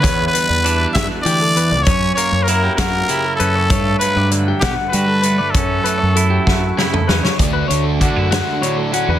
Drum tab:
HH |x-x-x-x-x-x-|x-x-x-x-x-x-|x-x-x-x-x-x-|x-x-x-------|
SD |------o-----|------o-----|------o-----|------o-o-oo|
T2 |------------|------------|------------|---------o--|
BD |o-----o-----|o-----o-----|o-----o-----|o-----o-----|

HH |x-x-x-x-x-x-|
SD |------o-----|
T2 |------------|
BD |o---o-------|